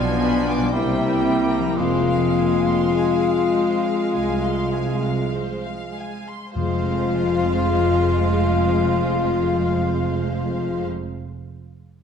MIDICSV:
0, 0, Header, 1, 13, 480
1, 0, Start_track
1, 0, Key_signature, -4, "minor"
1, 0, Tempo, 946372
1, 371, Tempo, 1047120
1, 851, Time_signature, 4, 2, 24, 8
1, 851, Tempo, 1183432
1, 2291, Tempo, 1224490
1, 2771, Tempo, 1111111
1, 3731, Tempo, 1142857
1, 5099, End_track
2, 0, Start_track
2, 0, Title_t, "Violin section"
2, 0, Program_c, 0, 48
2, 4, Note_on_c, 0, 80, 44
2, 124, Note_on_c, 0, 83, 46
2, 125, Note_off_c, 0, 80, 0
2, 244, Note_on_c, 0, 86, 43
2, 246, Note_off_c, 0, 83, 0
2, 369, Note_off_c, 0, 86, 0
2, 371, Note_on_c, 0, 72, 43
2, 476, Note_off_c, 0, 72, 0
2, 481, Note_on_c, 0, 76, 41
2, 600, Note_off_c, 0, 76, 0
2, 601, Note_on_c, 0, 79, 41
2, 723, Note_off_c, 0, 79, 0
2, 723, Note_on_c, 0, 82, 37
2, 850, Note_on_c, 0, 72, 44
2, 851, Note_off_c, 0, 82, 0
2, 959, Note_off_c, 0, 72, 0
2, 971, Note_on_c, 0, 77, 39
2, 1088, Note_off_c, 0, 77, 0
2, 1088, Note_on_c, 0, 80, 34
2, 1204, Note_on_c, 0, 84, 38
2, 1206, Note_off_c, 0, 80, 0
2, 1322, Note_on_c, 0, 80, 40
2, 1324, Note_off_c, 0, 84, 0
2, 1444, Note_off_c, 0, 80, 0
2, 1445, Note_on_c, 0, 77, 35
2, 1565, Note_off_c, 0, 77, 0
2, 1566, Note_on_c, 0, 72, 38
2, 1687, Note_off_c, 0, 72, 0
2, 1687, Note_on_c, 0, 77, 37
2, 1809, Note_off_c, 0, 77, 0
2, 1812, Note_on_c, 0, 80, 38
2, 1923, Note_off_c, 0, 80, 0
2, 1931, Note_on_c, 0, 84, 37
2, 2048, Note_on_c, 0, 80, 33
2, 2051, Note_off_c, 0, 84, 0
2, 2170, Note_off_c, 0, 80, 0
2, 2170, Note_on_c, 0, 77, 32
2, 2292, Note_off_c, 0, 77, 0
2, 2294, Note_on_c, 0, 72, 33
2, 2413, Note_off_c, 0, 72, 0
2, 2414, Note_on_c, 0, 77, 33
2, 2536, Note_off_c, 0, 77, 0
2, 2538, Note_on_c, 0, 80, 32
2, 2659, Note_off_c, 0, 80, 0
2, 2659, Note_on_c, 0, 84, 31
2, 2773, Note_off_c, 0, 84, 0
2, 2773, Note_on_c, 0, 72, 48
2, 4613, Note_off_c, 0, 72, 0
2, 5099, End_track
3, 0, Start_track
3, 0, Title_t, "Violin section"
3, 0, Program_c, 1, 48
3, 0, Note_on_c, 1, 80, 55
3, 370, Note_off_c, 1, 80, 0
3, 372, Note_on_c, 1, 79, 48
3, 842, Note_off_c, 1, 79, 0
3, 854, Note_on_c, 1, 77, 46
3, 2667, Note_off_c, 1, 77, 0
3, 2771, Note_on_c, 1, 77, 45
3, 4611, Note_off_c, 1, 77, 0
3, 5099, End_track
4, 0, Start_track
4, 0, Title_t, "Flute"
4, 0, Program_c, 2, 73
4, 0, Note_on_c, 2, 74, 48
4, 371, Note_on_c, 2, 76, 64
4, 378, Note_off_c, 2, 74, 0
4, 849, Note_off_c, 2, 76, 0
4, 852, Note_on_c, 2, 77, 52
4, 2276, Note_off_c, 2, 77, 0
4, 2770, Note_on_c, 2, 77, 52
4, 4610, Note_off_c, 2, 77, 0
4, 5099, End_track
5, 0, Start_track
5, 0, Title_t, "French horn section"
5, 0, Program_c, 3, 60
5, 0, Note_on_c, 3, 62, 61
5, 370, Note_off_c, 3, 62, 0
5, 370, Note_on_c, 3, 64, 62
5, 849, Note_on_c, 3, 65, 57
5, 851, Note_off_c, 3, 64, 0
5, 2291, Note_off_c, 3, 65, 0
5, 2773, Note_on_c, 3, 65, 56
5, 4613, Note_off_c, 3, 65, 0
5, 5099, End_track
6, 0, Start_track
6, 0, Title_t, "Clarinet"
6, 0, Program_c, 4, 71
6, 0, Note_on_c, 4, 59, 51
6, 367, Note_on_c, 4, 60, 59
6, 374, Note_off_c, 4, 59, 0
6, 849, Note_off_c, 4, 60, 0
6, 854, Note_on_c, 4, 60, 53
6, 2277, Note_off_c, 4, 60, 0
6, 2773, Note_on_c, 4, 65, 47
6, 4612, Note_off_c, 4, 65, 0
6, 5099, End_track
7, 0, Start_track
7, 0, Title_t, "Harp"
7, 0, Program_c, 5, 46
7, 0, Note_on_c, 5, 47, 43
7, 0, Note_on_c, 5, 56, 39
7, 0, Note_on_c, 5, 62, 36
7, 0, Note_on_c, 5, 65, 35
7, 276, Note_on_c, 5, 48, 40
7, 300, Note_on_c, 5, 55, 34
7, 321, Note_on_c, 5, 60, 34
7, 343, Note_off_c, 5, 47, 0
7, 344, Note_on_c, 5, 70, 33
7, 354, Note_off_c, 5, 56, 0
7, 366, Note_off_c, 5, 62, 0
7, 377, Note_off_c, 5, 65, 0
7, 765, Note_on_c, 5, 53, 37
7, 786, Note_on_c, 5, 56, 31
7, 800, Note_off_c, 5, 60, 0
7, 806, Note_on_c, 5, 60, 33
7, 828, Note_on_c, 5, 68, 33
7, 830, Note_off_c, 5, 48, 0
7, 840, Note_off_c, 5, 55, 0
7, 859, Note_off_c, 5, 70, 0
7, 2355, Note_off_c, 5, 53, 0
7, 2372, Note_off_c, 5, 56, 0
7, 2389, Note_off_c, 5, 60, 0
7, 2408, Note_off_c, 5, 68, 0
7, 2771, Note_on_c, 5, 53, 37
7, 2801, Note_on_c, 5, 56, 37
7, 2830, Note_on_c, 5, 60, 34
7, 2861, Note_on_c, 5, 65, 38
7, 2892, Note_on_c, 5, 68, 38
7, 2922, Note_on_c, 5, 72, 41
7, 4611, Note_off_c, 5, 53, 0
7, 4640, Note_off_c, 5, 56, 0
7, 4668, Note_off_c, 5, 60, 0
7, 4699, Note_off_c, 5, 65, 0
7, 4728, Note_off_c, 5, 68, 0
7, 4758, Note_off_c, 5, 72, 0
7, 5099, End_track
8, 0, Start_track
8, 0, Title_t, "Viola section"
8, 0, Program_c, 6, 48
8, 0, Note_on_c, 6, 59, 55
8, 369, Note_off_c, 6, 59, 0
8, 369, Note_on_c, 6, 58, 50
8, 1324, Note_off_c, 6, 58, 0
8, 1325, Note_on_c, 6, 56, 44
8, 2665, Note_off_c, 6, 56, 0
8, 2771, Note_on_c, 6, 56, 50
8, 4611, Note_off_c, 6, 56, 0
8, 5099, End_track
9, 0, Start_track
9, 0, Title_t, "Cor anglais"
9, 0, Program_c, 7, 69
9, 0, Note_on_c, 7, 53, 60
9, 365, Note_off_c, 7, 53, 0
9, 368, Note_on_c, 7, 55, 57
9, 848, Note_on_c, 7, 56, 52
9, 854, Note_off_c, 7, 55, 0
9, 2291, Note_off_c, 7, 56, 0
9, 2767, Note_on_c, 7, 65, 52
9, 4607, Note_off_c, 7, 65, 0
9, 5099, End_track
10, 0, Start_track
10, 0, Title_t, "Trombone section"
10, 0, Program_c, 8, 61
10, 0, Note_on_c, 8, 53, 67
10, 0, Note_on_c, 8, 59, 49
10, 364, Note_on_c, 8, 55, 45
10, 366, Note_off_c, 8, 53, 0
10, 366, Note_on_c, 8, 58, 40
10, 368, Note_off_c, 8, 59, 0
10, 848, Note_off_c, 8, 55, 0
10, 848, Note_on_c, 8, 53, 40
10, 849, Note_off_c, 8, 58, 0
10, 850, Note_on_c, 8, 56, 41
10, 2582, Note_off_c, 8, 56, 0
10, 2597, Note_off_c, 8, 53, 0
10, 2769, Note_on_c, 8, 56, 46
10, 2771, Note_on_c, 8, 53, 41
10, 4609, Note_off_c, 8, 56, 0
10, 4611, Note_off_c, 8, 53, 0
10, 5099, End_track
11, 0, Start_track
11, 0, Title_t, "Cello section"
11, 0, Program_c, 10, 48
11, 0, Note_on_c, 10, 47, 58
11, 290, Note_off_c, 10, 47, 0
11, 371, Note_on_c, 10, 48, 58
11, 766, Note_off_c, 10, 48, 0
11, 852, Note_on_c, 10, 41, 47
11, 1246, Note_off_c, 10, 41, 0
11, 1812, Note_on_c, 10, 36, 41
11, 2213, Note_off_c, 10, 36, 0
11, 2772, Note_on_c, 10, 41, 51
11, 4612, Note_off_c, 10, 41, 0
11, 5099, End_track
12, 0, Start_track
12, 0, Title_t, "Timpani"
12, 0, Program_c, 11, 47
12, 2773, Note_on_c, 11, 41, 36
12, 4613, Note_off_c, 11, 41, 0
12, 5099, End_track
13, 0, Start_track
13, 0, Title_t, "Double bass section"
13, 0, Program_c, 12, 48
13, 0, Note_on_c, 12, 35, 52
13, 287, Note_off_c, 12, 35, 0
13, 369, Note_on_c, 12, 36, 48
13, 765, Note_off_c, 12, 36, 0
13, 849, Note_on_c, 12, 29, 50
13, 1244, Note_off_c, 12, 29, 0
13, 1810, Note_on_c, 12, 36, 42
13, 2212, Note_off_c, 12, 36, 0
13, 2773, Note_on_c, 12, 29, 51
13, 4613, Note_off_c, 12, 29, 0
13, 5099, End_track
0, 0, End_of_file